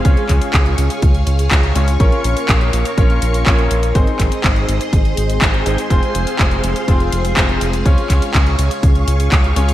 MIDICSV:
0, 0, Header, 1, 5, 480
1, 0, Start_track
1, 0, Tempo, 487805
1, 50, Time_signature, 4, 2, 24, 8
1, 9581, End_track
2, 0, Start_track
2, 0, Title_t, "String machine"
2, 0, Program_c, 0, 50
2, 0, Note_on_c, 0, 68, 78
2, 0, Note_on_c, 0, 77, 72
2, 51, Note_on_c, 0, 73, 75
2, 51, Note_on_c, 0, 85, 86
2, 1932, Note_off_c, 0, 68, 0
2, 1970, Note_on_c, 0, 70, 81
2, 3852, Note_off_c, 0, 73, 0
2, 3852, Note_off_c, 0, 77, 0
2, 3852, Note_off_c, 0, 85, 0
2, 3871, Note_off_c, 0, 70, 0
2, 3889, Note_on_c, 0, 84, 87
2, 3890, Note_on_c, 0, 68, 78
2, 3890, Note_on_c, 0, 72, 72
2, 3890, Note_on_c, 0, 75, 72
2, 5791, Note_off_c, 0, 75, 0
2, 5811, Note_on_c, 0, 77, 72
2, 7691, Note_off_c, 0, 84, 0
2, 7692, Note_off_c, 0, 72, 0
2, 7729, Note_on_c, 0, 73, 73
2, 7730, Note_on_c, 0, 85, 88
2, 9581, Note_off_c, 0, 68, 0
2, 9581, Note_off_c, 0, 73, 0
2, 9581, Note_off_c, 0, 77, 0
2, 9581, Note_off_c, 0, 85, 0
2, 9581, End_track
3, 0, Start_track
3, 0, Title_t, "Grand piano"
3, 0, Program_c, 1, 0
3, 49, Note_on_c, 1, 61, 80
3, 49, Note_on_c, 1, 65, 74
3, 49, Note_on_c, 1, 68, 75
3, 49, Note_on_c, 1, 73, 88
3, 1701, Note_off_c, 1, 61, 0
3, 1701, Note_off_c, 1, 65, 0
3, 1701, Note_off_c, 1, 68, 0
3, 1701, Note_off_c, 1, 73, 0
3, 1729, Note_on_c, 1, 61, 83
3, 1729, Note_on_c, 1, 65, 75
3, 1729, Note_on_c, 1, 68, 75
3, 1729, Note_on_c, 1, 73, 93
3, 1856, Note_off_c, 1, 61, 0
3, 1856, Note_off_c, 1, 65, 0
3, 1856, Note_off_c, 1, 68, 0
3, 1856, Note_off_c, 1, 73, 0
3, 1969, Note_on_c, 1, 61, 85
3, 1969, Note_on_c, 1, 65, 78
3, 1969, Note_on_c, 1, 70, 78
3, 1969, Note_on_c, 1, 73, 93
3, 2901, Note_off_c, 1, 61, 0
3, 2901, Note_off_c, 1, 65, 0
3, 2901, Note_off_c, 1, 70, 0
3, 2901, Note_off_c, 1, 73, 0
3, 2929, Note_on_c, 1, 61, 82
3, 2929, Note_on_c, 1, 65, 75
3, 2929, Note_on_c, 1, 70, 74
3, 2929, Note_on_c, 1, 73, 91
3, 3381, Note_off_c, 1, 61, 0
3, 3381, Note_off_c, 1, 65, 0
3, 3381, Note_off_c, 1, 70, 0
3, 3381, Note_off_c, 1, 73, 0
3, 3409, Note_on_c, 1, 61, 85
3, 3409, Note_on_c, 1, 65, 81
3, 3409, Note_on_c, 1, 70, 82
3, 3409, Note_on_c, 1, 73, 98
3, 3861, Note_off_c, 1, 61, 0
3, 3861, Note_off_c, 1, 65, 0
3, 3861, Note_off_c, 1, 70, 0
3, 3861, Note_off_c, 1, 73, 0
3, 3888, Note_on_c, 1, 60, 82
3, 3889, Note_on_c, 1, 63, 75
3, 3889, Note_on_c, 1, 68, 75
3, 3889, Note_on_c, 1, 72, 87
3, 5541, Note_off_c, 1, 60, 0
3, 5541, Note_off_c, 1, 63, 0
3, 5541, Note_off_c, 1, 68, 0
3, 5541, Note_off_c, 1, 72, 0
3, 5570, Note_on_c, 1, 60, 82
3, 5570, Note_on_c, 1, 63, 73
3, 5570, Note_on_c, 1, 68, 74
3, 5570, Note_on_c, 1, 72, 89
3, 5696, Note_off_c, 1, 60, 0
3, 5696, Note_off_c, 1, 63, 0
3, 5696, Note_off_c, 1, 68, 0
3, 5696, Note_off_c, 1, 72, 0
3, 5810, Note_on_c, 1, 60, 86
3, 5810, Note_on_c, 1, 65, 80
3, 5810, Note_on_c, 1, 68, 80
3, 5810, Note_on_c, 1, 72, 92
3, 6741, Note_off_c, 1, 60, 0
3, 6741, Note_off_c, 1, 65, 0
3, 6741, Note_off_c, 1, 68, 0
3, 6741, Note_off_c, 1, 72, 0
3, 6770, Note_on_c, 1, 65, 73
3, 6770, Note_on_c, 1, 68, 74
3, 6770, Note_on_c, 1, 72, 89
3, 6771, Note_on_c, 1, 60, 82
3, 7221, Note_off_c, 1, 65, 0
3, 7221, Note_off_c, 1, 72, 0
3, 7222, Note_off_c, 1, 60, 0
3, 7222, Note_off_c, 1, 68, 0
3, 7250, Note_on_c, 1, 60, 87
3, 7250, Note_on_c, 1, 72, 98
3, 7251, Note_on_c, 1, 65, 81
3, 7251, Note_on_c, 1, 68, 79
3, 7701, Note_off_c, 1, 60, 0
3, 7701, Note_off_c, 1, 72, 0
3, 7702, Note_off_c, 1, 65, 0
3, 7702, Note_off_c, 1, 68, 0
3, 7730, Note_on_c, 1, 65, 74
3, 7730, Note_on_c, 1, 68, 76
3, 7731, Note_on_c, 1, 61, 79
3, 7731, Note_on_c, 1, 73, 89
3, 9382, Note_off_c, 1, 61, 0
3, 9382, Note_off_c, 1, 65, 0
3, 9382, Note_off_c, 1, 68, 0
3, 9382, Note_off_c, 1, 73, 0
3, 9410, Note_on_c, 1, 61, 85
3, 9410, Note_on_c, 1, 65, 77
3, 9410, Note_on_c, 1, 68, 78
3, 9410, Note_on_c, 1, 73, 93
3, 9536, Note_off_c, 1, 61, 0
3, 9536, Note_off_c, 1, 73, 0
3, 9537, Note_off_c, 1, 65, 0
3, 9537, Note_off_c, 1, 68, 0
3, 9581, End_track
4, 0, Start_track
4, 0, Title_t, "Analog synth bass"
4, 0, Program_c, 2, 38
4, 49, Note_on_c, 2, 37, 97
4, 156, Note_off_c, 2, 37, 0
4, 289, Note_on_c, 2, 37, 87
4, 396, Note_off_c, 2, 37, 0
4, 528, Note_on_c, 2, 37, 90
4, 742, Note_off_c, 2, 37, 0
4, 769, Note_on_c, 2, 37, 87
4, 876, Note_off_c, 2, 37, 0
4, 1008, Note_on_c, 2, 37, 98
4, 1222, Note_off_c, 2, 37, 0
4, 1248, Note_on_c, 2, 37, 94
4, 1462, Note_off_c, 2, 37, 0
4, 1488, Note_on_c, 2, 37, 98
4, 1702, Note_off_c, 2, 37, 0
4, 1728, Note_on_c, 2, 37, 96
4, 1942, Note_off_c, 2, 37, 0
4, 1968, Note_on_c, 2, 34, 98
4, 2076, Note_off_c, 2, 34, 0
4, 2208, Note_on_c, 2, 34, 85
4, 2316, Note_off_c, 2, 34, 0
4, 2448, Note_on_c, 2, 34, 94
4, 2662, Note_off_c, 2, 34, 0
4, 2689, Note_on_c, 2, 34, 88
4, 2796, Note_off_c, 2, 34, 0
4, 2928, Note_on_c, 2, 34, 100
4, 3143, Note_off_c, 2, 34, 0
4, 3169, Note_on_c, 2, 34, 95
4, 3383, Note_off_c, 2, 34, 0
4, 3408, Note_on_c, 2, 34, 95
4, 3622, Note_off_c, 2, 34, 0
4, 3649, Note_on_c, 2, 34, 97
4, 3863, Note_off_c, 2, 34, 0
4, 3888, Note_on_c, 2, 32, 96
4, 3996, Note_off_c, 2, 32, 0
4, 4128, Note_on_c, 2, 32, 87
4, 4236, Note_off_c, 2, 32, 0
4, 4369, Note_on_c, 2, 32, 93
4, 4583, Note_off_c, 2, 32, 0
4, 4610, Note_on_c, 2, 32, 86
4, 4717, Note_off_c, 2, 32, 0
4, 4849, Note_on_c, 2, 32, 98
4, 5063, Note_off_c, 2, 32, 0
4, 5091, Note_on_c, 2, 32, 93
4, 5304, Note_off_c, 2, 32, 0
4, 5329, Note_on_c, 2, 32, 94
4, 5543, Note_off_c, 2, 32, 0
4, 5570, Note_on_c, 2, 32, 86
4, 5677, Note_off_c, 2, 32, 0
4, 5810, Note_on_c, 2, 29, 96
4, 5916, Note_off_c, 2, 29, 0
4, 6050, Note_on_c, 2, 29, 84
4, 6157, Note_off_c, 2, 29, 0
4, 6290, Note_on_c, 2, 29, 91
4, 6503, Note_off_c, 2, 29, 0
4, 6530, Note_on_c, 2, 29, 88
4, 6637, Note_off_c, 2, 29, 0
4, 6770, Note_on_c, 2, 29, 99
4, 6983, Note_off_c, 2, 29, 0
4, 7009, Note_on_c, 2, 29, 94
4, 7223, Note_off_c, 2, 29, 0
4, 7250, Note_on_c, 2, 29, 93
4, 7463, Note_off_c, 2, 29, 0
4, 7490, Note_on_c, 2, 29, 97
4, 7703, Note_off_c, 2, 29, 0
4, 7730, Note_on_c, 2, 37, 94
4, 7836, Note_off_c, 2, 37, 0
4, 7970, Note_on_c, 2, 37, 83
4, 8077, Note_off_c, 2, 37, 0
4, 8209, Note_on_c, 2, 37, 93
4, 8423, Note_off_c, 2, 37, 0
4, 8449, Note_on_c, 2, 37, 89
4, 8556, Note_off_c, 2, 37, 0
4, 8690, Note_on_c, 2, 37, 98
4, 8903, Note_off_c, 2, 37, 0
4, 8929, Note_on_c, 2, 37, 93
4, 9143, Note_off_c, 2, 37, 0
4, 9170, Note_on_c, 2, 37, 98
4, 9383, Note_off_c, 2, 37, 0
4, 9409, Note_on_c, 2, 37, 97
4, 9581, Note_off_c, 2, 37, 0
4, 9581, End_track
5, 0, Start_track
5, 0, Title_t, "Drums"
5, 49, Note_on_c, 9, 36, 119
5, 49, Note_on_c, 9, 42, 51
5, 147, Note_off_c, 9, 36, 0
5, 147, Note_off_c, 9, 42, 0
5, 168, Note_on_c, 9, 42, 25
5, 267, Note_off_c, 9, 42, 0
5, 288, Note_on_c, 9, 39, 35
5, 288, Note_on_c, 9, 42, 88
5, 289, Note_on_c, 9, 36, 60
5, 386, Note_off_c, 9, 39, 0
5, 386, Note_off_c, 9, 42, 0
5, 387, Note_off_c, 9, 36, 0
5, 408, Note_on_c, 9, 42, 51
5, 507, Note_off_c, 9, 42, 0
5, 528, Note_on_c, 9, 36, 113
5, 528, Note_on_c, 9, 39, 116
5, 528, Note_on_c, 9, 42, 50
5, 626, Note_off_c, 9, 39, 0
5, 626, Note_off_c, 9, 42, 0
5, 627, Note_off_c, 9, 36, 0
5, 648, Note_on_c, 9, 42, 25
5, 747, Note_off_c, 9, 42, 0
5, 768, Note_on_c, 9, 42, 85
5, 866, Note_off_c, 9, 42, 0
5, 888, Note_on_c, 9, 42, 52
5, 986, Note_off_c, 9, 42, 0
5, 1007, Note_on_c, 9, 42, 52
5, 1009, Note_on_c, 9, 36, 117
5, 1106, Note_off_c, 9, 42, 0
5, 1107, Note_off_c, 9, 36, 0
5, 1128, Note_on_c, 9, 42, 25
5, 1226, Note_off_c, 9, 42, 0
5, 1247, Note_on_c, 9, 42, 92
5, 1346, Note_off_c, 9, 42, 0
5, 1368, Note_on_c, 9, 42, 51
5, 1466, Note_off_c, 9, 42, 0
5, 1488, Note_on_c, 9, 36, 116
5, 1488, Note_on_c, 9, 39, 120
5, 1488, Note_on_c, 9, 42, 52
5, 1587, Note_off_c, 9, 36, 0
5, 1587, Note_off_c, 9, 39, 0
5, 1587, Note_off_c, 9, 42, 0
5, 1607, Note_on_c, 9, 42, 26
5, 1706, Note_off_c, 9, 42, 0
5, 1727, Note_on_c, 9, 42, 88
5, 1825, Note_off_c, 9, 42, 0
5, 1848, Note_on_c, 9, 42, 51
5, 1946, Note_off_c, 9, 42, 0
5, 1968, Note_on_c, 9, 36, 121
5, 1968, Note_on_c, 9, 42, 49
5, 2066, Note_off_c, 9, 42, 0
5, 2067, Note_off_c, 9, 36, 0
5, 2089, Note_on_c, 9, 42, 24
5, 2187, Note_off_c, 9, 42, 0
5, 2208, Note_on_c, 9, 42, 83
5, 2306, Note_off_c, 9, 42, 0
5, 2329, Note_on_c, 9, 42, 48
5, 2427, Note_off_c, 9, 42, 0
5, 2448, Note_on_c, 9, 36, 117
5, 2448, Note_on_c, 9, 39, 123
5, 2448, Note_on_c, 9, 42, 49
5, 2546, Note_off_c, 9, 39, 0
5, 2546, Note_off_c, 9, 42, 0
5, 2547, Note_off_c, 9, 36, 0
5, 2569, Note_on_c, 9, 42, 25
5, 2667, Note_off_c, 9, 42, 0
5, 2688, Note_on_c, 9, 42, 85
5, 2786, Note_off_c, 9, 42, 0
5, 2808, Note_on_c, 9, 42, 50
5, 2907, Note_off_c, 9, 42, 0
5, 2928, Note_on_c, 9, 36, 118
5, 2928, Note_on_c, 9, 42, 49
5, 3027, Note_off_c, 9, 36, 0
5, 3027, Note_off_c, 9, 42, 0
5, 3049, Note_on_c, 9, 42, 24
5, 3148, Note_off_c, 9, 42, 0
5, 3169, Note_on_c, 9, 42, 89
5, 3267, Note_off_c, 9, 42, 0
5, 3290, Note_on_c, 9, 42, 49
5, 3388, Note_off_c, 9, 42, 0
5, 3408, Note_on_c, 9, 36, 116
5, 3409, Note_on_c, 9, 39, 124
5, 3409, Note_on_c, 9, 42, 49
5, 3507, Note_off_c, 9, 36, 0
5, 3507, Note_off_c, 9, 39, 0
5, 3507, Note_off_c, 9, 42, 0
5, 3529, Note_on_c, 9, 42, 24
5, 3627, Note_off_c, 9, 42, 0
5, 3648, Note_on_c, 9, 42, 87
5, 3747, Note_off_c, 9, 42, 0
5, 3768, Note_on_c, 9, 42, 47
5, 3867, Note_off_c, 9, 42, 0
5, 3888, Note_on_c, 9, 36, 118
5, 3888, Note_on_c, 9, 42, 48
5, 3986, Note_off_c, 9, 42, 0
5, 3987, Note_off_c, 9, 36, 0
5, 4008, Note_on_c, 9, 42, 24
5, 4107, Note_off_c, 9, 42, 0
5, 4129, Note_on_c, 9, 36, 60
5, 4129, Note_on_c, 9, 39, 36
5, 4129, Note_on_c, 9, 42, 82
5, 4227, Note_off_c, 9, 36, 0
5, 4227, Note_off_c, 9, 39, 0
5, 4227, Note_off_c, 9, 42, 0
5, 4249, Note_on_c, 9, 42, 49
5, 4348, Note_off_c, 9, 42, 0
5, 4369, Note_on_c, 9, 36, 115
5, 4370, Note_on_c, 9, 39, 117
5, 4370, Note_on_c, 9, 42, 48
5, 4467, Note_off_c, 9, 36, 0
5, 4468, Note_off_c, 9, 39, 0
5, 4468, Note_off_c, 9, 42, 0
5, 4490, Note_on_c, 9, 42, 24
5, 4588, Note_off_c, 9, 42, 0
5, 4611, Note_on_c, 9, 42, 82
5, 4709, Note_off_c, 9, 42, 0
5, 4730, Note_on_c, 9, 42, 48
5, 4829, Note_off_c, 9, 42, 0
5, 4849, Note_on_c, 9, 36, 114
5, 4850, Note_on_c, 9, 42, 47
5, 4947, Note_off_c, 9, 36, 0
5, 4949, Note_off_c, 9, 42, 0
5, 4970, Note_on_c, 9, 42, 24
5, 5069, Note_off_c, 9, 42, 0
5, 5090, Note_on_c, 9, 42, 85
5, 5189, Note_off_c, 9, 42, 0
5, 5210, Note_on_c, 9, 42, 48
5, 5309, Note_off_c, 9, 42, 0
5, 5329, Note_on_c, 9, 36, 117
5, 5330, Note_on_c, 9, 39, 118
5, 5330, Note_on_c, 9, 42, 48
5, 5428, Note_off_c, 9, 36, 0
5, 5428, Note_off_c, 9, 39, 0
5, 5428, Note_off_c, 9, 42, 0
5, 5450, Note_on_c, 9, 42, 23
5, 5549, Note_off_c, 9, 42, 0
5, 5570, Note_on_c, 9, 42, 82
5, 5668, Note_off_c, 9, 42, 0
5, 5690, Note_on_c, 9, 42, 47
5, 5789, Note_off_c, 9, 42, 0
5, 5809, Note_on_c, 9, 36, 114
5, 5810, Note_on_c, 9, 42, 48
5, 5908, Note_off_c, 9, 36, 0
5, 5909, Note_off_c, 9, 42, 0
5, 5931, Note_on_c, 9, 42, 23
5, 6029, Note_off_c, 9, 42, 0
5, 6050, Note_on_c, 9, 42, 85
5, 6149, Note_off_c, 9, 42, 0
5, 6169, Note_on_c, 9, 42, 48
5, 6268, Note_off_c, 9, 42, 0
5, 6289, Note_on_c, 9, 39, 113
5, 6289, Note_on_c, 9, 42, 48
5, 6290, Note_on_c, 9, 36, 109
5, 6388, Note_off_c, 9, 36, 0
5, 6388, Note_off_c, 9, 39, 0
5, 6388, Note_off_c, 9, 42, 0
5, 6410, Note_on_c, 9, 42, 25
5, 6508, Note_off_c, 9, 42, 0
5, 6530, Note_on_c, 9, 42, 86
5, 6628, Note_off_c, 9, 42, 0
5, 6651, Note_on_c, 9, 42, 49
5, 6749, Note_off_c, 9, 42, 0
5, 6770, Note_on_c, 9, 36, 111
5, 6771, Note_on_c, 9, 42, 49
5, 6868, Note_off_c, 9, 36, 0
5, 6869, Note_off_c, 9, 42, 0
5, 6890, Note_on_c, 9, 42, 25
5, 6989, Note_off_c, 9, 42, 0
5, 7010, Note_on_c, 9, 42, 89
5, 7109, Note_off_c, 9, 42, 0
5, 7130, Note_on_c, 9, 42, 48
5, 7229, Note_off_c, 9, 42, 0
5, 7250, Note_on_c, 9, 36, 113
5, 7251, Note_on_c, 9, 39, 117
5, 7251, Note_on_c, 9, 42, 50
5, 7348, Note_off_c, 9, 36, 0
5, 7349, Note_off_c, 9, 39, 0
5, 7349, Note_off_c, 9, 42, 0
5, 7370, Note_on_c, 9, 42, 24
5, 7469, Note_off_c, 9, 42, 0
5, 7490, Note_on_c, 9, 42, 85
5, 7589, Note_off_c, 9, 42, 0
5, 7610, Note_on_c, 9, 42, 46
5, 7709, Note_off_c, 9, 42, 0
5, 7730, Note_on_c, 9, 36, 111
5, 7731, Note_on_c, 9, 42, 50
5, 7828, Note_off_c, 9, 36, 0
5, 7829, Note_off_c, 9, 42, 0
5, 7851, Note_on_c, 9, 42, 24
5, 7950, Note_off_c, 9, 42, 0
5, 7970, Note_on_c, 9, 36, 56
5, 7970, Note_on_c, 9, 39, 33
5, 7970, Note_on_c, 9, 42, 83
5, 8068, Note_off_c, 9, 36, 0
5, 8069, Note_off_c, 9, 39, 0
5, 8069, Note_off_c, 9, 42, 0
5, 8090, Note_on_c, 9, 42, 50
5, 8189, Note_off_c, 9, 42, 0
5, 8210, Note_on_c, 9, 36, 104
5, 8210, Note_on_c, 9, 39, 114
5, 8210, Note_on_c, 9, 42, 49
5, 8308, Note_off_c, 9, 36, 0
5, 8308, Note_off_c, 9, 39, 0
5, 8308, Note_off_c, 9, 42, 0
5, 8331, Note_on_c, 9, 42, 25
5, 8429, Note_off_c, 9, 42, 0
5, 8450, Note_on_c, 9, 42, 84
5, 8548, Note_off_c, 9, 42, 0
5, 8571, Note_on_c, 9, 42, 52
5, 8669, Note_off_c, 9, 42, 0
5, 8690, Note_on_c, 9, 36, 109
5, 8690, Note_on_c, 9, 42, 51
5, 8788, Note_off_c, 9, 36, 0
5, 8789, Note_off_c, 9, 42, 0
5, 8811, Note_on_c, 9, 42, 25
5, 8909, Note_off_c, 9, 42, 0
5, 8931, Note_on_c, 9, 42, 89
5, 9029, Note_off_c, 9, 42, 0
5, 9051, Note_on_c, 9, 42, 50
5, 9149, Note_off_c, 9, 42, 0
5, 9170, Note_on_c, 9, 36, 108
5, 9171, Note_on_c, 9, 39, 110
5, 9171, Note_on_c, 9, 42, 50
5, 9268, Note_off_c, 9, 36, 0
5, 9269, Note_off_c, 9, 39, 0
5, 9269, Note_off_c, 9, 42, 0
5, 9291, Note_on_c, 9, 42, 25
5, 9390, Note_off_c, 9, 42, 0
5, 9410, Note_on_c, 9, 42, 88
5, 9509, Note_off_c, 9, 42, 0
5, 9531, Note_on_c, 9, 42, 51
5, 9581, Note_off_c, 9, 42, 0
5, 9581, End_track
0, 0, End_of_file